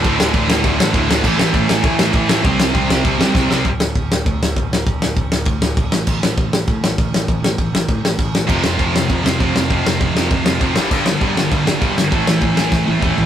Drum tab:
CC |--------|x-------|--------|--------|
RD |x-x-x-x-|--x-x-x-|x-x-x---|x-x-x-x-|
SD |-o-o-o-o|-o-o-o-o|-o-o-ooo|-o-o-o-o|
T1 |--------|--------|--------|--------|
T2 |--------|--------|--------|--------|
FT |--------|--------|--------|--------|
BD |o-o-o-o-|o-o-o-o-|o-o-o-o-|o-o-o-o-|

CC |--------|x-------|--------|x-------|
RD |x-x-x-x-|--x-x-x-|x-x-x-x-|--x-x-x-|
SD |-o-o-o-o|-o-o-o-o|-o-o-o-o|-o-o-o-o|
T1 |--------|--------|--------|--------|
T2 |--------|--------|--------|--------|
FT |--------|--------|--------|--------|
BD |o-o-o-o-|o-o-o-o-|o-o-o-o-|o-o-o-o-|

CC |--------|x-------|--------|
RD |x-x-x-x-|--x-x-x-|x-x-----|
SD |-o-o-o-o|-o-o-o-o|-o-oo---|
T1 |--------|--------|-----o--|
T2 |--------|--------|------o-|
FT |--------|--------|-------o|
BD |o-o-o-o-|o-o-o-o-|o-o-o-o-|